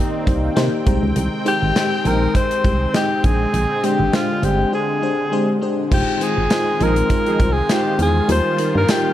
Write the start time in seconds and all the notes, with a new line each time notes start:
Already playing: C3 D#3 A#3 C4 D#4 G4 C5 D5 G5
0.00 D#5
0.27 C2 A#3 D#4 G4 C5 D#5, kick, closed hi-hat
0.44 F5
0.56 C3 A#3 D#4 G4 C5 G5, snare, closed hi-hat
0.86 C2 C3 G#3 C4 D#4 G4 C5 A#5, kick, closed hi-hat
1.03 C#2
1.16 C2, closed hi-hat
1.45 G#3 D#4 G4 C5, closed hi-hat
1.62 G#1
1.75 G#3 D#4 G4 C5, snare, closed hi-hat
2.05 A#1 G#3 D#4 G4 A#4 C5, closed hi-hat
2.35 G#3 D#4 G4 C5, kick, closed hi-hat
2.51 closed hi-hat
2.64 C2 G#3 D#4 G4 C5, kick, closed hi-hat
2.94 G#3 D#4 G4 D#5, snare, closed hi-hat
3.24 A#1 A#2 D3 G#3 D4 G#4 C5 G5, kick, closed hi-hat
3.54 A#1, closed hi-hat
3.83 G#3 D4 G4 C5, closed hi-hat
3.99 G#1
4.13 G#3 D4 F4 G4 C5, snare, closed hi-hat
4.42 G1 G#3 D4 G4 C5, closed hi-hat
4.72 G#3 D4 G4 G#4 C5
5.02 G#3 D4 G4 C5
5.32 G#3 D4 G4 C5
5.61 G#3 D4 G4 C5
5.91 F1 D#3 G#3 C4 D#4 F4 G4 C5, kick, crash
6.21 G#3 D#4 F4 G#4 C5, closed hi-hat
6.37 G#1
6.50 G#3 D#4 F4 C5, snare, closed hi-hat, tambourine
6.80 A#1 F3 G#3 D#4 F4 G#4 A#4 C5, closed hi-hat
6.96 closed hi-hat
7.10 G#3 D#4 F4 C5, kick, closed hi-hat
7.26 F3 D#4 G#4, closed hi-hat
7.39 C2 G#3 D#4 F4 C5, kick, closed hi-hat
7.52 G#4
7.69 G#3 D#4 F4 G4 C5, snare, closed hi-hat, tambourine
7.98 E2 G#3 D#4 F4 G#4 C5, closed hi-hat
8.29 D#2 D#3 G3 A#3 D#4 F4 A#4 C5, closed hi-hat
8.58 G3 D#4 F4 A#4, closed hi-hat
8.75 G2 A#4
8.88 G3 D#4 F4 G4 A#4, snare, closed hi-hat, tambourine